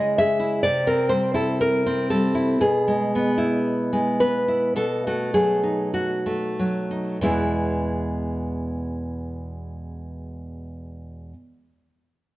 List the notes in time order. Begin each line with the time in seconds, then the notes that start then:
Already playing: C#3 G#3 E4 G#4 D#5
0.18 G#4 E5
0.39 E4
0.63 C3 D5
0.87 C4 A#4
1.09 G3 C5
1.34 E4 A4
1.61 A#4
1.86 C4
2.10 G3 A4
2.35 E4
2.61 B2 G#4
2.88 G#3
3.15 B3
3.38 E4
3.93 G#3
4.20 B3 B4
4.48 E4
4.76 B2 A4
5.07 A3 F#4
5.34 F#3 G#4
5.63 D#4
5.94 F#4
6.26 A3
6.59 F#3
6.91 D#4
7.21 E2 B2 G#3 B3 E4